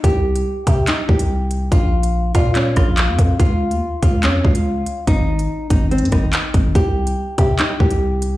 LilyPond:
<<
  \new Staff \with { instrumentName = "Nylon-string guitar" } { \time 4/4 \key c \phrygian \tempo 4 = 143 g'4. g'8 ees'8 g'4. | f'4. f'8 des'8 f'4. | f'4. f'8 des'8 f'4. | ees'4. ees'8 c'8 ees'4. |
g'4. g'8 ees'8 g'4. | }
  \new Staff \with { instrumentName = "808-style bass" } { \clef bass \time 4/4 \key c \phrygian c,4 r8 c8 r8 c,4. | bes,,4. bes,4 bes,,8. f,16 f,8 | des,8. ees,16 r8 des,8 f,8 des,4 r8 | aes,,4 r8 aes,,8. aes,16 aes,,8 r8 aes,,8 |
c,4 r8 c8 r8 c,4. | }
  \new DrumStaff \with { instrumentName = "Drums" } \drummode { \time 4/4 <hh bd>8. hh16 r8 <hh bd>8 <hc hh>8 bd16 hh16 r8 hh8 | <hh bd>8. hh16 r8 <hh bd>8 <hc hh>8 <hh bd ss>8 <hc hh>8 <hh bd>8 | <hh bd>8. hh16 r8 <hh bd>8 <hc hh>8 bd16 hh16 r8 hh8 | <hh bd>8. hh16 r8 <hh bd>8 \tuplet 3/2 { hh16 hh16 hh16 <hh bd ss>16 r16 r16 } <hc hh>8 <hh bd>8 |
<hh bd>8. hh16 r8 <hh bd>8 <hc hh>8 bd16 hh16 r8 hh8 | }
>>